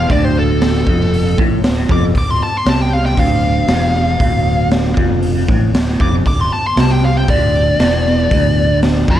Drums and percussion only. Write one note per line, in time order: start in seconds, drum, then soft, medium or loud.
0.10 kick loud
0.10 open hi-hat soft
0.61 snare loud
0.61 open hi-hat medium
0.87 kick loud
1.00 snare soft
1.14 open hi-hat medium
1.38 kick loud
1.64 snare loud
1.64 open hi-hat medium
1.89 kick loud
2.15 kick medium
2.15 open hi-hat medium
2.66 snare loud
2.66 open hi-hat medium
3.05 snare soft
3.17 kick loud
3.17 open hi-hat medium
3.68 snare loud
3.68 open hi-hat medium
4.20 kick loud
4.20 open hi-hat medium
4.71 snare loud
4.71 open hi-hat soft
4.85 snare soft
4.97 kick loud
5.22 open hi-hat medium
5.49 kick loud
5.74 snare loud
5.74 open hi-hat medium
6.00 kick loud
6.26 kick medium
6.26 open hi-hat medium
6.77 snare loud
6.77 open hi-hat medium
7.28 kick loud
7.28 open hi-hat medium
7.80 snare loud
7.80 open hi-hat medium
8.31 kick loud
8.31 open hi-hat medium
8.82 snare loud
8.82 open hi-hat medium
9.08 kick loud